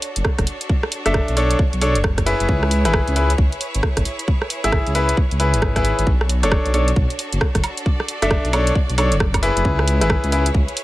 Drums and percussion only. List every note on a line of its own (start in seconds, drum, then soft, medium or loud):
0.02 open hi-hat loud
0.16 closed hi-hat medium
0.25 kick loud
0.25 cross-stick loud
0.39 kick medium
0.39 cross-stick medium
0.39 closed hi-hat medium
0.47 open hi-hat loud
0.61 closed hi-hat medium
0.69 kick loud
0.83 cross-stick medium
0.92 open hi-hat loud
1.06 cross-stick medium
1.06 closed hi-hat medium
1.14 kick loud
1.14 cross-stick loud
1.28 closed hi-hat soft
1.37 open hi-hat medium
1.51 closed hi-hat medium
1.59 kick loud
1.73 closed hi-hat soft
1.81 open hi-hat medium
1.95 closed hi-hat medium
2.04 kick loud
2.04 cross-stick loud
2.18 kick medium
2.18 cross-stick medium
2.18 closed hi-hat soft
2.27 open hi-hat loud
2.40 closed hi-hat medium
2.49 kick loud
2.63 cross-stick medium
2.71 open hi-hat loud
2.85 cross-stick medium
2.85 closed hi-hat medium
2.93 kick loud
2.93 cross-stick loud
3.08 closed hi-hat soft
3.16 open hi-hat medium
3.30 closed hi-hat medium
3.38 kick loud
3.52 closed hi-hat soft
3.61 open hi-hat medium
3.75 closed hi-hat medium
3.83 kick loud
3.83 cross-stick loud
3.97 kick medium
3.97 cross-stick medium
3.97 closed hi-hat medium
4.05 open hi-hat medium
4.19 closed hi-hat medium
4.28 kick loud
4.42 cross-stick medium
4.50 open hi-hat loud
4.64 cross-stick soft
4.64 closed hi-hat medium
4.72 kick loud
4.72 cross-stick loud
4.87 closed hi-hat soft
4.95 open hi-hat medium
5.09 closed hi-hat medium
5.17 kick loud
5.31 closed hi-hat soft
5.40 open hi-hat medium
5.54 closed hi-hat medium
5.62 kick loud
5.62 cross-stick loud
5.76 kick medium
5.76 cross-stick medium
5.76 closed hi-hat soft
5.85 open hi-hat medium
5.99 closed hi-hat medium
6.07 kick loud
6.21 cross-stick medium
6.29 open hi-hat loud
6.43 cross-stick soft
6.43 closed hi-hat medium
6.52 kick loud
6.52 cross-stick loud
6.66 closed hi-hat soft
6.74 open hi-hat medium
6.88 closed hi-hat medium
6.96 kick loud
7.10 closed hi-hat soft
7.19 open hi-hat medium
7.33 closed hi-hat medium
7.41 kick loud
7.41 cross-stick loud
7.55 kick medium
7.55 cross-stick medium
7.55 closed hi-hat medium
7.64 open hi-hat medium
7.64 high woodblock medium
7.77 closed hi-hat medium
7.86 kick loud
8.00 cross-stick medium
8.08 open hi-hat loud
8.22 cross-stick soft
8.22 closed hi-hat medium
8.31 kick loud
8.31 cross-stick loud
8.45 closed hi-hat soft
8.53 open hi-hat medium
8.53 high woodblock medium
8.67 closed hi-hat medium
8.75 kick loud
8.90 closed hi-hat soft
8.98 open hi-hat loud
8.98 high woodblock medium
9.12 closed hi-hat medium
9.20 kick loud
9.20 cross-stick loud
9.34 kick medium
9.34 cross-stick medium
9.34 closed hi-hat medium
9.34 high woodblock medium
9.43 open hi-hat medium
9.57 closed hi-hat medium
9.65 kick loud
9.79 cross-stick medium
9.88 open hi-hat loud
10.02 cross-stick soft
10.02 closed hi-hat medium
10.10 kick loud
10.10 cross-stick loud
10.24 closed hi-hat soft
10.32 open hi-hat medium
10.46 closed hi-hat medium
10.55 kick loud
10.68 closed hi-hat soft
10.77 open hi-hat loud